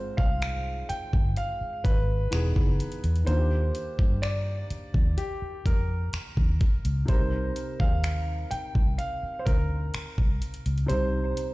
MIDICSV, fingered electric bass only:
0, 0, Header, 1, 3, 480
1, 0, Start_track
1, 0, Key_signature, -3, "minor"
1, 0, Tempo, 952381
1, 1651, Time_signature, 4, 2, 24, 8
1, 5815, End_track
2, 0, Start_track
2, 0, Title_t, "Fingered electric bass"
2, 0, Program_c, 0, 33
2, 91, Note_on_c, 0, 36, 78
2, 414, Note_off_c, 0, 36, 0
2, 571, Note_on_c, 0, 31, 78
2, 679, Note_off_c, 0, 31, 0
2, 930, Note_on_c, 0, 32, 86
2, 1146, Note_off_c, 0, 32, 0
2, 1172, Note_on_c, 0, 28, 89
2, 1279, Note_off_c, 0, 28, 0
2, 1291, Note_on_c, 0, 30, 89
2, 1399, Note_off_c, 0, 30, 0
2, 1532, Note_on_c, 0, 40, 82
2, 1639, Note_off_c, 0, 40, 0
2, 1650, Note_on_c, 0, 39, 94
2, 1866, Note_off_c, 0, 39, 0
2, 2011, Note_on_c, 0, 43, 81
2, 2334, Note_off_c, 0, 43, 0
2, 2492, Note_on_c, 0, 39, 73
2, 2599, Note_off_c, 0, 39, 0
2, 2851, Note_on_c, 0, 41, 86
2, 3066, Note_off_c, 0, 41, 0
2, 3211, Note_on_c, 0, 39, 90
2, 3319, Note_off_c, 0, 39, 0
2, 3452, Note_on_c, 0, 37, 77
2, 3559, Note_off_c, 0, 37, 0
2, 3571, Note_on_c, 0, 36, 95
2, 3786, Note_off_c, 0, 36, 0
2, 3931, Note_on_c, 0, 39, 79
2, 4254, Note_off_c, 0, 39, 0
2, 4411, Note_on_c, 0, 36, 85
2, 4519, Note_off_c, 0, 36, 0
2, 4771, Note_on_c, 0, 38, 90
2, 4986, Note_off_c, 0, 38, 0
2, 5132, Note_on_c, 0, 36, 86
2, 5239, Note_off_c, 0, 36, 0
2, 5373, Note_on_c, 0, 37, 80
2, 5479, Note_off_c, 0, 37, 0
2, 5492, Note_on_c, 0, 36, 104
2, 5707, Note_off_c, 0, 36, 0
2, 5815, End_track
3, 0, Start_track
3, 0, Title_t, "Muted fingered electric bass strokes"
3, 452, Note_on_c, 9, 29, 46
3, 502, Note_off_c, 9, 29, 0
3, 812, Note_on_c, 9, 29, 43
3, 862, Note_off_c, 9, 29, 0
3, 2372, Note_on_c, 9, 29, 46
3, 2422, Note_off_c, 9, 29, 0
3, 2732, Note_on_c, 9, 29, 43
3, 2782, Note_off_c, 9, 29, 0
3, 3091, Note_on_c, 9, 29, 42
3, 3142, Note_off_c, 9, 29, 0
3, 4293, Note_on_c, 9, 29, 46
3, 4343, Note_off_c, 9, 29, 0
3, 4653, Note_on_c, 9, 29, 42
3, 4703, Note_off_c, 9, 29, 0
3, 5013, Note_on_c, 9, 29, 42
3, 5063, Note_off_c, 9, 29, 0
3, 5815, End_track
0, 0, End_of_file